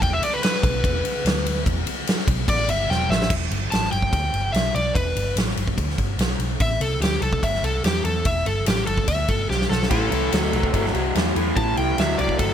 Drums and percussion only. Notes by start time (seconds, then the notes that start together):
0.02 kick, ride
0.23 ride
0.43 snare, ride
0.56 snare
0.63 kick, ride
0.84 kick, ride
1.05 ride
1.26 snare, ride
1.46 ride
1.66 kick, ride
1.87 ride
2.07 snare, ride
2.19 snare
2.28 kick, ride
2.48 kick, ride
2.69 ride
2.91 snare
3.12 snare
3.22 snare
3.30 kick, crash
3.51 ride
3.72 snare, ride
3.84 snare
3.92 ride
4.02 kick
4.13 kick, ride
4.34 ride
4.54 snare, ride
4.76 ride
4.95 kick, ride
5.16 ride
5.37 snare, ride
5.49 snare
5.57 ride
5.67 kick
5.78 kick, ride
5.90 snare
5.98 kick, ride
6.19 snare, ride
6.40 ride
6.60 kick, ride
6.81 ride
7.02 snare, ride
7.14 snare
7.22 ride
7.33 kick
7.43 kick, ride
7.55 snare
7.64 ride
7.84 snare, ride
8.05 ride
8.25 kick, ride
8.46 ride
8.66 snare, ride
8.87 ride
8.98 kick
9.08 kick, ride
9.28 kick, ride
9.51 snare
9.61 snare
9.72 snare
9.83 snare
9.91 kick, ride, crash
10.12 ride
10.32 snare, ride
10.53 ride
10.63 kick
10.74 kick, ride
10.86 snare
10.95 ride
11.15 snare, ride
11.36 ride
11.57 kick, ride
11.77 ride
11.98 snare, ride
12.19 ride
12.29 kick
12.39 kick, ride